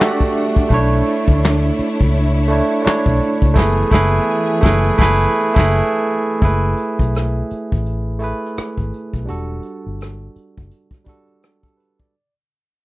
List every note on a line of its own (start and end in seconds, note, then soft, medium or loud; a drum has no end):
0.00 0.67 G3 medium
0.00 0.69 A3 medium
0.00 6.38 A3 medium
0.00 3.52 D4 medium
0.00 0.73 F#4 medium
0.00 0.73 G4 medium
0.00 0.72 D5 medium
0.00 0.60 E5 medium
0.00 0.67 F#5 medium
0.00 snare loud
0.00 clap loud
0.00 closed hi-hat medium
0.20 kick medium
0.37 closed hi-hat medium
0.56 kick loud
0.69 1.01 B1 loud
0.69 1.81 A3 medium
0.69 1.82 D4 medium
0.69 3.54 E4 medium
0.69 1.83 E4 medium
0.69 3.54 C#5 medium
0.69 kick loud
0.69 closed hi-hat medium
0.74 1.83 C#5 loud
1.06 closed hi-hat medium
1.28 1.70 D2 loud
1.28 kick medium
1.28 closed hi-hat soft
1.43 snare loud
1.43 clap medium
1.43 closed hi-hat medium
1.79 muted fingered electric bass stroke soft
1.79 closed hi-hat medium
2.01 2.60 C#2 medium
2.01 kick medium
2.01 closed hi-hat soft
2.14 closed hi-hat medium
2.48 2.78 A3 medium
2.48 2.79 D4 medium
2.48 2.79 E4 medium
2.48 closed hi-hat medium
2.52 2.80 C#5 medium
2.71 closed hi-hat soft
2.83 3.42 A3 medium
2.83 3.43 D4 medium
2.83 3.44 E4 medium
2.83 muted fingered electric bass stroke soft
2.83 closed hi-hat medium
2.87 3.45 C#5 medium
2.87 snare loud
2.87 clap medium
3.06 3.18 B1 medium
3.06 kick medium
3.22 closed hi-hat medium
3.42 3.56 C#2 medium
3.42 kick medium
3.42 closed hi-hat soft
3.54 3.82 F#1 medium
3.54 6.38 E3 medium
3.54 3.80 A3 medium
3.54 6.38 B3 medium
3.54 3.81 E4 loud
3.54 6.39 G#4 medium
3.54 3.82 G#4 loud
3.54 kick loud
3.54 crash medium
3.59 3.83 B4 medium
3.59 snare medium
3.91 4.18 F#1 loud
3.91 4.17 A3 medium
3.91 4.18 E4 loud
3.91 4.19 G#4 loud
3.91 kick loud
3.91 snare loud
3.95 4.19 B4 loud
4.61 4.89 F#1 loud
4.61 4.88 A3 medium
4.61 4.89 E4 medium
4.61 4.90 G#4 medium
4.61 kick loud
4.66 4.90 B4 medium
4.66 snare loud
4.98 5.25 F#1 medium
4.98 5.24 A3 loud
4.98 5.25 E4 medium
4.98 5.26 G#4 loud
4.98 kick loud
4.98 snare loud
5.02 5.26 B4 loud
5.55 5.80 F#1 loud
5.55 5.78 A3 loud
5.55 5.79 E4 loud
5.55 5.80 G#4 loud
5.55 kick loud
5.55 crash medium
5.59 5.81 B4 medium
5.59 snare medium
6.40 6.72 F#1 medium
6.40 6.49 G#3 medium
6.40 7.53 E4 medium
6.40 7.54 G#4 medium
6.40 kick loud
6.40 closed hi-hat medium
6.45 7.55 A3 medium
6.45 7.55 B4 medium
6.77 closed hi-hat medium
6.99 7.41 B1 medium
6.99 kick medium
7.15 cross-stick medium
7.15 closed hi-hat medium
7.50 muted fingered electric bass stroke soft
7.50 closed hi-hat medium
7.72 8.32 A1 medium
7.72 kick medium
7.72 closed hi-hat soft
7.86 closed hi-hat medium
8.19 9.05 A3 medium
8.19 9.06 E4 medium
8.19 9.07 G#4 medium
8.19 closed hi-hat medium
8.24 9.07 B4 medium
8.45 cross-stick soft
8.57 muted fingered electric bass stroke soft
8.57 cross-stick loud
8.57 closed hi-hat medium
8.78 8.90 G#1 medium
8.78 kick medium
8.94 closed hi-hat medium
9.13 9.26 B1 medium
9.13 kick medium
9.13 closed hi-hat soft
9.25 10.38 G3 medium
9.25 10.39 D4 medium
9.25 10.39 F#4 medium
9.25 closed hi-hat medium
9.30 9.59 E1 medium
9.30 10.40 A4 medium
9.63 closed hi-hat soft
9.86 10.27 G1 medium
10.01 cross-stick medium
10.01 closed hi-hat medium
10.36 muted fingered electric bass stroke soft
10.36 closed hi-hat soft
10.58 10.69 F#1 medium
10.58 kick medium
10.71 closed hi-hat medium
10.91 kick medium
10.91 cross-stick soft
11.04 11.91 G3 medium
11.04 11.91 D4 medium
11.04 11.42 F#4 medium
11.04 kick medium
11.04 closed hi-hat medium
11.09 11.43 A4 medium
11.27 closed hi-hat soft
11.42 11.63 G4 soft
11.42 cross-stick loud
11.42 closed hi-hat medium
11.63 11.77 A4 medium
11.63 kick medium
11.77 11.98 B4 medium
11.77 closed hi-hat medium
11.99 12.33 D5 soft
11.99 kick medium